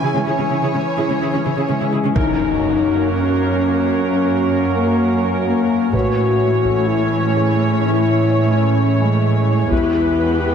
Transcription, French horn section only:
1.68 G#3
2.16 D#4
3.10 C#4
4.04 C#4
4.76 A#3
5.46 A#3
5.93 F#4
6.87 E4
7.82 E4
8.52 C#4
9.71 E4
10.42 G4

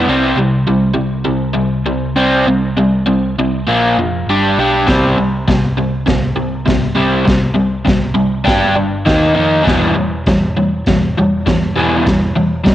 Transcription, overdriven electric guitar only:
0.09 C3 G3 C4
0.38 C3 G3
0.68 C3 G3
0.94 C3 G3
1.25 C3 G3
1.54 C3 G3
1.86 C3 G3
2.16 C3 G3 C4
2.47 C3 G3
2.77 C3 G3
3.06 C3 G3
3.39 C3 G3
3.67 A#2 F3 A#3
3.99 A#2 F3
4.30 G3 D4 G4
4.59 G3 D4 G4
4.87 C3 G3 C4
5.18 C3 G3
5.48 C3 G3
5.78 C3 G3
6.06 C3 G3
6.36 C3 G3
6.66 C3 G3
6.96 C3 G3 C4
7.25 C3 G3
7.54 C3 G3
7.85 C3 G3
8.14 C3 G3
8.44 G3 D4 G4
8.75 G3 D4
9.05 D#3 A#3 D#4
9.34 D#3 A#3 D#4
9.63 E3 G3 B3
9.95 E3 G3
10.27 E3 G3
10.57 E3 G3
10.88 E3 G3
11.17 E3 G3
11.46 E3 G3
11.76 E3 G3 B3
12.06 E3 G3
12.36 E3 G3
12.64 E3 G3

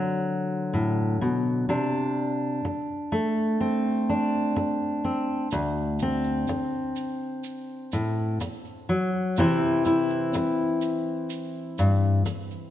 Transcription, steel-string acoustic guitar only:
Already playing: D3 F#3 C4
0.74 A2
1.21 B2
1.69 C3 D4
2.65 muted steel-string acoustic guitar stroke
3.12 A3
3.61 C4
4.10 D4
4.56 muted steel-string acoustic guitar stroke
5.04 C4
5.52 D2
6.02 C4
6.49 muted steel-string acoustic guitar stroke
7.93 A2
8.41 muted steel-string acoustic guitar stroke
8.89 F#3
9.38 C3 E3 C4 E4
9.86 E4
10.35 muted steel-string acoustic guitar stroke
11.79 G2
12.26 muted steel-string acoustic guitar stroke

